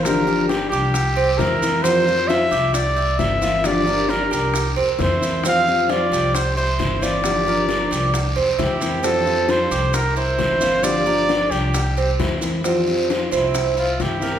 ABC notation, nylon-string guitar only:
X:1
M:4/4
L:1/8
Q:1/4=133
K:Cmix
V:1 name="Nylon-string guitar"
[D,F,B,DG] [F,B,DG] [F,B,DG]2 z2 [E,B,CE] [E,B,CE] | [F,G,CF] [G,CF] [F,G,CF]2 z2 [E,B,CE] [E,B,CE] | [D,F,B,DG] [F,B,DG] [F,B,DG]2 z2 [E,B,CE] [E,B,CE] | [F,G,CF] [G,CF] [F,G,CF]2 z2 [E,B,CE] [E,B,CE] |
[D,F,B,DG] [F,B,DG] [F,B,DG]2 z2 [E,B,CE] [E,B,CE] | [F,G,CF] [G,CF] [F,G,CF]2 z2 [E,B,CE] [E,B,CE] | [D,F,B,DG] [F,B,DG] [F,B,DG]2 z2 [E,B,CE] [E,B,CE] | [F,G,CF] [G,CF] [F,G,CF]2 z2 [E,B,CE] [E,B,CE] |]